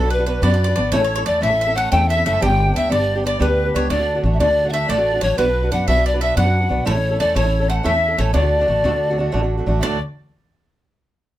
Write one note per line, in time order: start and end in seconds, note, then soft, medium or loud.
0.00 0.36 B1 medium
0.00 0.19 D4 soft
0.00 0.18 F#4 soft
0.00 0.14 A4 loud
0.00 0.17 B4 soft
0.06 0.12 C#5 medium
0.10 0.25 B4 medium
0.10 0.27 B4 medium
0.10 0.27 B4 loud
0.18 0.26 D4 soft
0.18 0.26 F#4 medium
0.18 0.27 B4 medium
0.26 0.41 B3 medium
0.26 0.41 D4 medium
0.26 0.42 F#4 medium
0.26 0.43 B4 medium
0.26 0.42 B4 medium
0.26 0.46 B4 medium
0.26 0.42 B4 medium
0.42 0.72 F#2 loud
0.42 0.51 B3 loud
0.42 0.52 D4 medium
0.42 0.51 F#4 loud
0.42 0.49 B4 loud
0.42 0.95 D5 loud
0.42 0.53 D5 medium
0.42 0.71 D5 loud
0.52 0.69 D4 soft
0.52 0.68 F#4 soft
0.52 0.63 D5 medium
0.64 0.77 B4 soft
0.64 0.75 D5 medium
0.70 0.75 D4 soft
0.70 0.76 F#4 soft
0.76 0.91 G#1 medium
0.76 0.92 B3 medium
0.76 0.93 D4 medium
0.76 0.93 F#4 medium
0.76 0.94 B4 medium
0.76 0.91 D5 medium
0.92 1.22 A1 loud
0.92 1.01 A2 medium
0.92 1.02 A3 loud
0.92 1.02 C#4 loud
0.92 1.01 E4 loud
0.92 1.00 A4 medium
0.92 1.03 C#5 loud
0.92 1.24 C#5 loud
0.92 1.26 C#5 loud
1.01 1.18 C#4 soft
1.01 1.17 E4 medium
1.01 1.16 A4 medium
1.01 1.14 C#5 medium
1.16 1.24 C#4 soft
1.16 1.25 E4 medium
1.16 1.26 A4 medium
1.16 1.25 C#5 loud
1.25 1.40 E2 medium
1.25 1.40 A3 medium
1.25 1.40 C#4 medium
1.25 1.41 E4 medium
1.25 1.41 A4 medium
1.25 1.43 D5 medium
1.25 1.44 D5 loud
1.25 1.44 D5 medium
1.41 1.85 A1 loud
1.41 1.50 A2 medium
1.41 1.51 A3 medium
1.41 1.51 C#4 medium
1.41 1.50 E4 medium
1.41 1.49 A4 medium
1.41 1.77 E5 loud
1.41 1.60 E5 medium
1.50 1.67 C#4 soft
1.50 1.67 E4 soft
1.50 1.65 A4 soft
1.60 1.78 E5 medium
1.60 1.77 E5 medium
1.67 1.74 C#4 medium
1.67 1.75 E4 medium
1.67 1.75 A4 medium
1.75 1.91 A3 medium
1.75 1.91 C#4 medium
1.75 1.92 E4 medium
1.75 1.92 A4 medium
1.75 1.93 F#5 loud
1.75 1.92 F#5 medium
1.75 1.91 F#5 medium
1.91 2.21 E2 loud
1.91 2.01 A2 medium
1.91 2.01 A3 medium
1.91 2.01 C#4 loud
1.91 2.00 E4 medium
1.91 1.99 A4 loud
1.91 2.10 G5 loud
1.91 2.09 G5 medium
1.91 1.98 G5 loud
2.00 2.18 C#4 soft
2.00 2.16 E4 medium
2.00 2.15 A4 medium
2.09 2.25 E5 loud
2.09 2.25 E5 medium
2.09 2.35 E5 loud
2.16 2.24 C#4 soft
2.16 2.25 E4 soft
2.16 2.25 A4 soft
2.24 2.40 F#1 medium
2.24 2.40 A3 medium
2.24 2.41 C#4 medium
2.24 2.42 E4 medium
2.24 2.42 A4 medium
2.24 2.41 E5 medium
2.24 2.45 E5 loud
2.34 2.44 A5 medium
2.40 2.71 G1 loud
2.40 2.50 G3 medium
2.40 2.50 B3 medium
2.40 2.49 D4 medium
2.40 2.48 G4 loud
2.40 2.93 G5 medium
2.40 2.73 G5 loud
2.40 2.76 G5 loud
2.49 2.67 B3 soft
2.49 2.66 D4 medium
2.49 2.65 G4 medium
2.66 2.73 B3 soft
2.66 2.74 D4 medium
2.66 2.74 G4 medium
2.73 2.88 G3 medium
2.73 2.89 B3 medium
2.73 2.89 D4 medium
2.73 2.90 G4 medium
2.73 2.90 E5 medium
2.73 2.91 E5 loud
2.89 3.34 G1 loud
2.89 2.99 G3 medium
2.89 2.99 B3 medium
2.89 2.98 D4 medium
2.89 2.97 G4 medium
2.89 3.24 D5 medium
2.89 3.23 D5 medium
2.89 3.23 D5 loud
2.98 3.17 B3 soft
2.98 3.15 D4 soft
2.98 3.14 G4 soft
3.15 3.23 B3 soft
3.15 3.24 D4 medium
3.15 3.24 G4 medium
3.23 3.38 G3 medium
3.23 3.38 B3 medium
3.23 3.39 D4 medium
3.23 3.39 G4 medium
3.23 3.43 D5 medium
3.23 3.42 D5 medium
3.23 3.41 D5 medium
3.39 3.70 D2 loud
3.39 3.49 G3 medium
3.39 3.49 B3 medium
3.39 3.48 D4 loud
3.39 3.47 G4 loud
3.39 3.68 B4 loud
3.39 3.90 B4 loud
3.39 3.73 B4 medium
3.48 3.67 B3 soft
3.48 3.64 G4 soft
3.66 3.74 B3 soft
3.66 3.75 D4 soft
3.66 3.74 G4 soft
3.74 3.88 C#2 medium
3.74 3.90 G3 medium
3.74 3.90 B3 medium
3.74 3.90 D4 medium
3.74 3.91 G4 medium
3.74 3.90 C#5 medium
3.89 3.99 D2 medium
3.89 4.19 D2 loud
3.89 3.99 A2 medium
3.89 3.99 D3 loud
3.89 3.99 A3 medium
3.89 3.99 D4 loud
3.89 3.98 F#4 loud
3.89 4.22 D5 medium
3.89 4.18 D5 medium
3.89 4.22 D5 loud
3.99 4.16 D3 soft
3.99 4.14 A3 medium
3.99 4.16 D4 soft
3.99 4.14 F#4 medium
4.15 4.23 D3 medium
4.15 4.24 A3 medium
4.15 4.24 D4 soft
4.15 4.23 F#4 medium
4.24 4.37 A1 loud
4.24 4.39 D3 medium
4.24 4.40 A3 medium
4.24 4.39 D4 medium
4.24 4.39 F#4 medium
4.33 4.41 E5 medium
4.40 4.48 D2 medium
4.40 4.83 D2 loud
4.40 4.49 A2 medium
4.40 4.49 D3 medium
4.40 4.47 A3 medium
4.40 4.48 D4 loud
4.40 4.46 F#4 medium
4.40 4.71 D5 loud
4.40 4.56 D5 medium
4.40 4.75 D5 medium
4.47 4.65 D3 soft
4.47 4.64 A3 soft
4.47 4.65 D4 soft
4.47 4.63 F#4 soft
4.64 4.70 D3 soft
4.64 4.72 A3 medium
4.64 4.71 D4 medium
4.64 4.72 F#4 medium
4.69 4.87 D3 medium
4.69 4.88 A3 medium
4.69 4.88 D4 medium
4.69 4.90 E5 loud
4.69 4.73 F#5 medium
4.73 4.88 F#4 medium
4.73 4.90 E5 medium
4.73 4.91 E5 medium
4.88 5.18 A1 medium
4.88 4.98 D2 medium
4.88 4.98 A2 medium
4.88 4.98 D3 medium
4.88 4.98 A3 loud
4.88 4.98 D4 loud
4.88 4.96 F#4 loud
4.88 5.25 D5 loud
4.88 5.21 D5 medium
4.98 5.15 D3 soft
4.98 5.14 A3 medium
4.98 5.14 D4 soft
4.98 5.12 F#4 medium
5.14 5.21 D3 soft
5.14 5.23 A3 soft
5.14 5.22 D4 soft
5.14 5.22 F#4 medium
5.21 5.36 A1 medium
5.21 5.37 D3 medium
5.21 5.38 A3 medium
5.21 5.37 D4 medium
5.21 5.37 F#4 medium
5.21 5.38 C#5 medium
5.21 5.41 C#5 medium
5.21 5.40 C#5 loud
5.37 5.68 B1 medium
5.37 5.47 B3 medium
5.37 5.47 D4 medium
5.37 5.46 F#4 loud
5.37 5.70 B4 medium
5.37 5.75 B4 loud
5.37 5.45 B4 loud
5.37 5.71 B4 medium
5.46 5.63 D4 soft
5.46 5.62 F#4 soft
5.46 5.61 B4 medium
5.62 5.70 D4 soft
5.62 5.71 F#4 medium
5.62 5.71 B4 medium
5.71 5.85 F#2 medium
5.71 5.86 B3 medium
5.71 5.87 D4 medium
5.71 5.87 F#4 medium
5.71 5.88 B4 medium
5.71 5.89 F#5 medium
5.71 5.87 F#5 loud
5.71 5.89 F#5 loud
5.87 6.30 B1 loud
5.87 5.97 B3 medium
5.87 5.97 D4 medium
5.87 5.96 F#4 medium
5.87 5.95 B4 medium
5.87 6.04 E5 medium
5.87 6.08 E5 loud
5.96 6.14 D4 soft
5.96 6.14 F#4 soft
5.96 6.13 B4 medium
6.05 6.19 D5 medium
6.05 6.20 D5 medium
6.05 6.23 D5 loud
6.14 6.21 D4 medium
6.14 6.21 F#4 medium
6.14 6.22 B4 medium
6.20 6.35 B3 medium
6.20 6.36 D4 medium
6.20 6.36 F#4 medium
6.20 6.37 B4 medium
6.20 6.26 E5 medium
6.20 6.36 E5 medium
6.20 6.39 E5 loud
6.36 6.66 F#2 loud
6.36 6.46 B3 medium
6.36 6.46 D4 medium
6.36 6.45 F#4 medium
6.36 6.44 B4 medium
6.36 6.83 F#5 loud
6.36 6.87 F#5 loud
6.36 6.83 F#5 medium
6.45 6.62 D4 soft
6.45 6.61 F#4 medium
6.45 6.60 B4 medium
6.61 6.69 D4 soft
6.61 6.70 F#4 soft
6.61 6.70 B4 soft
6.69 6.84 B1 medium
6.69 6.85 B3 medium
6.69 6.85 D4 medium
6.69 6.86 F#4 medium
6.69 6.86 B4 medium
6.85 7.16 A1 loud
6.85 6.95 A2 medium
6.85 6.95 A3 medium
6.85 6.95 C#4 medium
6.85 6.94 E4 loud
6.85 6.93 A4 loud
6.85 7.17 C#5 medium
6.85 7.18 C#5 medium
6.85 7.21 C#5 loud
6.94 7.12 C#4 soft
6.94 7.11 E4 medium
6.94 7.09 A4 soft
7.11 7.18 C#4 soft
7.11 7.19 E4 medium
7.11 7.19 A4 medium
7.19 7.34 E2 loud
7.19 7.33 A3 medium
7.19 7.34 C#4 medium
7.19 7.34 E4 medium
7.19 7.35 A4 medium
7.19 7.34 D5 medium
7.19 7.38 D5 loud
7.19 7.35 D5 medium
7.34 7.79 A1 loud
7.34 7.44 A2 medium
7.34 7.44 A3 medium
7.34 7.45 C#4 medium
7.34 7.44 E4 medium
7.34 7.42 A4 medium
7.34 7.70 C#5 medium
7.34 7.68 C#5 medium
7.34 7.69 C#5 loud
7.44 7.61 C#4 soft
7.44 7.60 E4 soft
7.44 7.58 A4 medium
7.60 7.68 C#4 medium
7.60 7.68 E4 medium
7.60 7.69 A4 medium
7.68 7.83 A3 medium
7.68 7.83 C#4 medium
7.68 7.83 E4 medium
7.68 7.84 A4 medium
7.68 7.88 F#5 medium
7.68 7.85 F#5 medium
7.68 7.76 F#5 medium
7.83 8.15 E2 medium
7.83 7.93 A2 medium
7.83 7.94 A3 medium
7.83 7.94 C#4 medium
7.83 7.92 E4 loud
7.83 7.91 A4 medium
7.83 8.16 E5 loud
7.83 8.17 E5 medium
7.83 8.22 E5 medium
7.92 8.10 C#4 soft
7.92 8.09 E4 soft
7.92 8.07 A4 soft
8.08 8.17 C#4 soft
8.08 8.18 E4 soft
8.08 8.18 A4 medium
8.17 8.32 A1 medium
8.17 8.33 A3 medium
8.17 8.33 C#4 medium
8.17 8.34 E4 medium
8.17 8.34 A4 medium
8.17 8.35 C#5 medium
8.17 8.33 C#5 medium
8.17 8.36 C#5 medium
8.33 8.43 D2 medium
8.33 8.64 D2 loud
8.33 8.43 A2 medium
8.33 8.43 D3 loud
8.33 8.43 A3 loud
8.33 8.43 D4 loud
8.33 8.41 F#4 loud
8.33 9.51 D5 loud
8.33 9.47 D5 medium
8.33 9.48 D5 medium
8.42 8.60 D3 soft
8.42 8.59 A3 medium
8.42 8.60 D4 medium
8.42 8.58 F#4 medium
8.59 8.66 D3 soft
8.59 8.68 A3 medium
8.59 8.67 D4 medium
8.59 8.68 F#4 medium
8.67 8.82 A1 loud
8.67 8.83 D3 medium
8.67 8.84 A3 medium
8.67 8.84 D4 medium
8.67 8.84 F#4 medium
8.84 8.93 D2 medium
8.84 9.27 D2 loud
8.84 8.93 A2 loud
8.84 8.93 D3 loud
8.84 8.92 A3 loud
8.84 8.92 D4 medium
8.84 8.91 F#4 medium
8.92 9.11 D3 soft
8.92 9.10 A3 soft
8.92 9.10 D4 soft
8.92 9.09 F#4 medium
9.10 9.17 D3 soft
9.10 9.18 A3 medium
9.10 9.17 D4 medium
9.10 9.18 F#4 medium
9.18 9.31 D3 medium
9.18 9.32 A3 medium
9.18 9.32 D4 medium
9.18 9.32 F#4 medium
9.32 9.63 A1 medium
9.32 9.42 D2 loud
9.32 9.42 A2 medium
9.32 9.42 D3 loud
9.32 9.42 A3 medium
9.32 9.42 D4 medium
9.32 9.41 F#4 loud
9.42 9.59 D3 soft
9.42 9.57 A3 soft
9.42 9.58 D4 medium
9.42 9.56 F#4 medium
9.57 9.65 D3 soft
9.57 9.67 A3 medium
9.57 9.66 D4 soft
9.57 9.66 F#4 medium
9.66 9.81 A1 medium
9.66 9.81 D3 medium
9.66 9.82 A3 medium
9.66 9.82 D4 medium
9.66 9.82 F#4 medium
9.79 9.96 D2 loud
9.79 10.00 D2 medium
9.79 9.97 A2 medium
9.79 9.97 D3 medium
9.79 9.97 D4 loud
9.79 9.99 D5 loud
9.79 10.00 D5 loud
9.79 9.99 D5 loud
9.79 9.84 E5 medium
9.84 9.98 A3 medium
9.84 9.98 F#4 loud